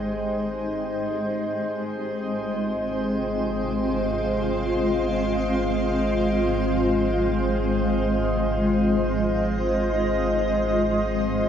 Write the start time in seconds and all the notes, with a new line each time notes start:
Already playing: G#1 G#3 D#4 G4 C5 G5
1.52 G#1
1.60 C4
1.90 F4
2.94 F5
7.74 D#5